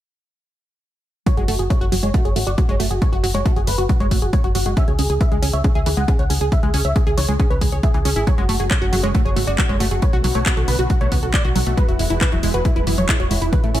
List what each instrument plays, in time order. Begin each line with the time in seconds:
1.26 synth arpeggio sound F#3, supersaw synth C#5, kick, closed hi-hat
1.37 fm bass F#1, synth arpeggio sound G#3, supersaw synth F#4, closed hi-hat
1.48 fm bass F#1, synth arpeggio sound A3, supersaw synth F#4, open hi-hat
1.59 fm bass F#1, supersaw synth F#4, synth arpeggio sound G#4, closed hi-hat
1.70 synth arpeggio sound A3, supersaw synth C#5, kick, closed hi-hat
1.81 fm bass F#1, supersaw synth F#4, synth arpeggio sound F#4, closed hi-hat
1.92 fm bass F#1, synth arpeggio sound F#3, supersaw synth F#4, open hi-hat
2.03 fm bass F#1, synth arpeggio sound G#3, supersaw synth C#5, closed hi-hat
2.14 synth arpeggio sound A3, supersaw synth F#4, kick, closed hi-hat
2.25 fm bass F#1, synth arpeggio sound G#4, supersaw synth C#5, closed hi-hat
2.36 fm bass G#1, synth arpeggio sound A3, supersaw synth F#4, open hi-hat
2.47 fm bass F#1, synth arpeggio sound F#4, supersaw synth D5, closed hi-hat
2.58 synth arpeggio sound F#3, supersaw synth F#4, kick, closed hi-hat
2.69 fm bass F#1, synth arpeggio sound G#3, supersaw synth C#5, closed hi-hat
2.80 fm bass F#1, synth arpeggio sound A3, supersaw synth F#4, open hi-hat
2.91 fm bass F#1, supersaw synth F#4, synth arpeggio sound G#4, closed hi-hat
3.02 synth arpeggio sound A3, supersaw synth C#5, kick, closed hi-hat
3.13 fm bass F#1, synth arpeggio sound F#4, supersaw synth F#4, closed hi-hat
3.23 fm bass F#1, synth arpeggio sound F#3, supersaw synth F#4, open hi-hat
3.34 fm bass F#1, synth arpeggio sound G#3, supersaw synth C#5, closed hi-hat
3.45 synth arpeggio sound A3, supersaw synth F#4, kick, closed hi-hat
3.56 fm bass F#1, supersaw synth F#4, synth arpeggio sound G#4, closed hi-hat
3.67 fm bass F#1, synth arpeggio sound A3, supersaw synth B4, open hi-hat
3.78 fm bass F#1, synth arpeggio sound F#4, supersaw synth F#4, closed hi-hat
3.89 synth arpeggio sound F#3, supersaw synth F#4, kick, closed hi-hat
4.00 fm bass F#1, synth arpeggio sound G#3, supersaw synth C#5, closed hi-hat
4.11 fm bass G#1, synth arpeggio sound A3, supersaw synth F#4, kick, open hi-hat
4.22 fm bass F#1, supersaw synth F#4, synth arpeggio sound G#4, closed hi-hat
4.33 synth arpeggio sound A3, supersaw synth C#5, kick, closed hi-hat
4.44 fm bass F#1, synth arpeggio sound F#4, supersaw synth F#4, closed hi-hat
4.55 fm bass F#1, synth arpeggio sound F#3, supersaw synth F#4, open hi-hat
4.66 fm bass F#1, synth arpeggio sound G#3, supersaw synth F#4, closed hi-hat
4.77 synth arpeggio sound C#4, supersaw synth E5, kick, closed hi-hat
4.88 fm bass C#2, supersaw synth G#4, synth arpeggio sound C#5, closed hi-hat
4.99 fm bass C#2, synth arpeggio sound C#4, supersaw synth G#4, open hi-hat
5.10 fm bass C#2, supersaw synth G#4, synth arpeggio sound G#4, closed hi-hat
5.21 synth arpeggio sound E3, supersaw synth E5, kick, closed hi-hat
5.32 fm bass C#2, synth arpeggio sound G#3, supersaw synth G#4, closed hi-hat
5.42 fm bass C#2, synth arpeggio sound C#4, supersaw synth G#4, open hi-hat
5.53 fm bass C#2, synth arpeggio sound C#5, supersaw synth E5, closed hi-hat
5.64 synth arpeggio sound C#4, supersaw synth G#4, kick, closed hi-hat
5.75 fm bass C#2, synth arpeggio sound G#4, supersaw synth E5, closed hi-hat
5.86 fm bass D2, synth arpeggio sound E3, supersaw synth G#4, open hi-hat
5.97 fm bass C#2, synth arpeggio sound G#3, supersaw synth F#5, closed hi-hat
6.08 synth arpeggio sound C#4, supersaw synth G#4, kick, closed hi-hat
6.19 fm bass C#2, synth arpeggio sound C#5, supersaw synth F#5, closed hi-hat
6.30 fm bass C#2, synth arpeggio sound C#4, supersaw synth G#4, open hi-hat
6.41 fm bass C#2, supersaw synth G#4, synth arpeggio sound G#4, closed hi-hat
6.52 synth arpeggio sound E3, supersaw synth E5, kick, closed hi-hat
6.63 fm bass C#2, synth arpeggio sound G#3, supersaw synth G#4, closed hi-hat
6.74 fm bass C#2, synth arpeggio sound C#4, supersaw synth G#4, open hi-hat
6.85 fm bass C#2, synth arpeggio sound C#5, supersaw synth E5, closed hi-hat
6.96 synth arpeggio sound C#4, supersaw synth G#4, kick, closed hi-hat
7.07 fm bass C#2, supersaw synth G#4, synth arpeggio sound G#4, closed hi-hat
7.18 fm bass C#2, synth arpeggio sound E3, supersaw synth C#5, open hi-hat
7.29 fm bass C#2, synth arpeggio sound G#3, supersaw synth G#4, closed hi-hat
7.40 synth arpeggio sound C#4, supersaw synth G#4, kick, closed hi-hat
7.50 fm bass C#2, supersaw synth B4, synth arpeggio sound C#5, closed hi-hat
7.61 fm bass C#2, synth arpeggio sound G#3, supersaw synth G#4, kick, open hi-hat
7.72 fm bass C#2, supersaw synth G#4, synth arpeggio sound C#5, closed hi-hat
7.83 supersaw synth G#4, synth arpeggio sound E5, kick, closed hi-hat
7.94 fm bass C#2, synth arpeggio sound E3, supersaw synth G#4, closed hi-hat
8.05 fm bass C#2, synth arpeggio sound C#4, supersaw synth G#4, open hi-hat
8.16 fm bass G#1, synth arpeggio sound E4, supersaw synth G#4
8.27 analog synth pad C#3 F#3 G#3 A3 F#4, synth arpeggio sound F#3, supersaw synth C#5, kick, closed hi-hat
8.38 fm bass F#1, synth arpeggio sound G#3, supersaw synth F#4, closed hi-hat
8.49 fm bass F#1, synth arpeggio sound A3, supersaw synth F#4, open hi-hat
8.60 fm bass F#1, supersaw synth F#4, synth arpeggio sound G#4, closed hi-hat
8.71 synth arpeggio sound A3, supersaw synth C#5, kick, clap, closed hi-hat
8.81 fm bass F#1, supersaw synth F#4, synth arpeggio sound F#4, closed hi-hat
8.92 fm bass F#1, synth arpeggio sound F#3, supersaw synth F#4, open hi-hat
9.03 fm bass F#1, synth arpeggio sound G#3, supersaw synth C#5, closed hi-hat
9.14 synth arpeggio sound A3, supersaw synth F#4, kick, closed hi-hat
9.25 fm bass F#1, synth arpeggio sound G#4, supersaw synth C#5, closed hi-hat
9.36 fm bass G#1, synth arpeggio sound A3, supersaw synth F#4, open hi-hat
9.47 fm bass F#1, synth arpeggio sound F#4, supersaw synth D5, closed hi-hat
9.58 synth arpeggio sound F#3, supersaw synth F#4, kick, clap, closed hi-hat
9.69 fm bass F#1, synth arpeggio sound G#3, supersaw synth C#5, closed hi-hat
9.80 fm bass F#1, synth arpeggio sound A3, supersaw synth F#4, open hi-hat
9.91 fm bass F#1, supersaw synth F#4, synth arpeggio sound G#4, closed hi-hat
10.02 analog synth pad D3 B3, synth arpeggio sound B3, supersaw synth C#5, kick, closed hi-hat
10.13 fm bass B1, synth arpeggio sound F#4, supersaw synth F#4, closed hi-hat
10.24 fm bass B1, synth arpeggio sound F#3, supersaw synth F#4, open hi-hat
10.35 fm bass B1, synth arpeggio sound A3, supersaw synth C#5, closed hi-hat
10.46 synth arpeggio sound B3, supersaw synth F#4, kick, clap, closed hi-hat
10.57 fm bass B1, supersaw synth F#4, synth arpeggio sound A4, closed hi-hat
10.68 fm bass B1, synth arpeggio sound B3, supersaw synth B4, open hi-hat
10.79 fm bass B1, synth arpeggio sound F#4, supersaw synth F#4, closed hi-hat
10.90 synth arpeggio sound F#3, supersaw synth F#4, kick, closed hi-hat
11.01 fm bass B1, synth arpeggio sound A3, supersaw synth C#5, closed hi-hat
11.12 fm bass C#2, synth arpeggio sound B3, supersaw synth F#4, kick, open hi-hat
11.23 fm bass B1, supersaw synth F#4, synth arpeggio sound A4, closed hi-hat
11.34 synth arpeggio sound B3, supersaw synth D5, kick, clap, closed hi-hat
11.45 fm bass B1, synth arpeggio sound F#4, supersaw synth F#4, closed hi-hat
11.56 fm bass B1, synth arpeggio sound F#3, supersaw synth F#4, open hi-hat
11.66 fm bass B1, synth arpeggio sound A3, supersaw synth F#4, closed hi-hat
11.77 analog synth pad E3 G#3 B3, synth arpeggio sound G#3, supersaw synth B4, kick, closed hi-hat
11.88 fm bass E1, supersaw synth E4, synth arpeggio sound F#4, closed hi-hat
11.99 fm bass E1, synth arpeggio sound G#3, supersaw synth E4, open hi-hat
12.10 fm bass E1, synth arpeggio sound E4, supersaw synth E4, closed hi-hat
12.21 synth arpeggio sound E3, supersaw synth B4, kick, clap, closed hi-hat
12.32 fm bass E1, synth arpeggio sound F#3, supersaw synth E4, closed hi-hat
12.43 fm bass E1, synth arpeggio sound G#3, supersaw synth E4, open hi-hat
12.54 fm bass E1, synth arpeggio sound F#4, supersaw synth B4, closed hi-hat
12.65 synth arpeggio sound G#3, supersaw synth E4, kick, closed hi-hat
12.76 fm bass E1, synth arpeggio sound E4, supersaw synth B4, closed hi-hat
12.87 fm bass F#1, synth arpeggio sound E3, supersaw synth E4, open hi-hat
12.98 fm bass E1, synth arpeggio sound F#3, supersaw synth C#5, closed hi-hat
13.09 synth arpeggio sound G#3, supersaw synth E4, kick, clap, closed hi-hat
13.20 fm bass E1, synth arpeggio sound F#4, supersaw synth C#5, closed hi-hat
13.31 fm bass E1, synth arpeggio sound G#3, supersaw synth E4, open hi-hat
13.42 fm bass E1, synth arpeggio sound E4, supersaw synth E4, closed hi-hat
13.52 analog synth pad C#3 A3 E4 A4, synth arpeggio sound E3, supersaw synth B4, kick, closed hi-hat
13.63 fm bass A1, synth arpeggio sound A3, supersaw synth E4, closed hi-hat
13.74 fm bass A1, synth arpeggio sound C#4, supersaw synth E4, open hi-hat